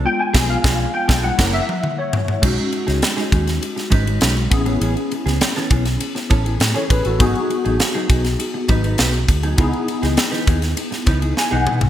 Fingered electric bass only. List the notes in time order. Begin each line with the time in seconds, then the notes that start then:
0.35 B1
0.64 B1
1.09 B1
1.39 F#1
2.43 B1
2.88 C#2
3.32 D#2
3.92 G#1
4.22 B1
4.51 A1
4.81 A1
5.26 C#2
5.71 B1
6.31 A1
6.60 A2
6.90 A1
7.06 A1
7.20 G#1
7.66 A1
8.10 B1
8.69 G#1
8.99 B1
9.29 D2
9.58 C#2
10.03 C#2
10.48 D#2
11.07 C#2
11.52 B1
11.67 B2
11.82 C2